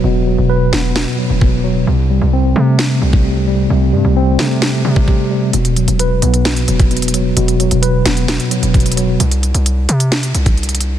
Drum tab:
HH |--------------------------------|--------------------------------|--------------------------------|x-x-x-x-x---x-x-x-x-x-x-xxxxx---|
SD |------------o---o---------------|----------------o---------------|------------o---o---------------|----------------o---------------|
BD |------------------------o-------|----------------------o---------|----------------------o-o-------|----------------------o---------|

HH |x-x-x-x-x---x-x-x-x-x-x-xxxxx---|x-x-x-x-x---x-x-x-x-x-x-xxxxx---|
SD |------------o---o---------------|----------------o---------------|
BD |------------------------o-------|----------------------o---------|